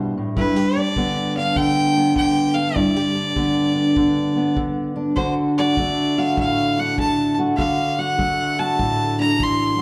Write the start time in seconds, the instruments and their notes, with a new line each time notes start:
Already playing: steel-string acoustic guitar G2 B2 E3 G3 E4 G4
0.18 steel-string acoustic guitar A2
0.36 steel-string acoustic guitar G2 E4, fiddle B4, kick
0.56 steel-string acoustic guitar G4
0.77 steel-string acoustic guitar D4, fiddle D5
0.96 steel-string acoustic guitar D3 B3, kick
1.37 steel-string acoustic guitar D4, fiddle F5
1.56 steel-string acoustic guitar D3, fiddle G5, kick
1.98 steel-string acoustic guitar B3
2.14 steel-string acoustic guitar D3, fiddle G5, kick
2.54 steel-string acoustic guitar D4, fiddle F5
2.75 steel-string acoustic guitar G2 E4, fiddle D5, kick
2.96 steel-string acoustic guitar G4
3.15 steel-string acoustic guitar D4
3.36 steel-string acoustic guitar D3 B3, kick
3.76 steel-string acoustic guitar D4
3.96 steel-string acoustic guitar D3, kick
4.36 steel-string acoustic guitar B3
4.57 steel-string acoustic guitar D3, kick
4.96 steel-string acoustic guitar D4
5.16 steel-string acoustic guitar D3 F#4, fiddle C5, kick
5.58 steel-string acoustic guitar F#4, fiddle D5
5.77 steel-string acoustic guitar A3 D4, kick
6.18 steel-string acoustic guitar F#4, fiddle F5
6.37 steel-string acoustic guitar A2, fiddle F5, kick
6.79 steel-string acoustic guitar D4, fiddle F#5
6.98 steel-string acoustic guitar A3, fiddle A5, kick
7.39 steel-string acoustic guitar F#4
7.57 steel-string acoustic guitar D3 F#4, fiddle F5, kick
7.99 steel-string acoustic guitar F#4, fiddle F#5
8.18 steel-string acoustic guitar A3 D4, kick
8.59 steel-string acoustic guitar F#4, fiddle A5
8.79 steel-string acoustic guitar A2, kick
9.20 steel-string acoustic guitar D4, fiddle A#5
9.39 steel-string acoustic guitar E3, kick
9.43 fiddle C6
9.78 steel-string acoustic guitar F#3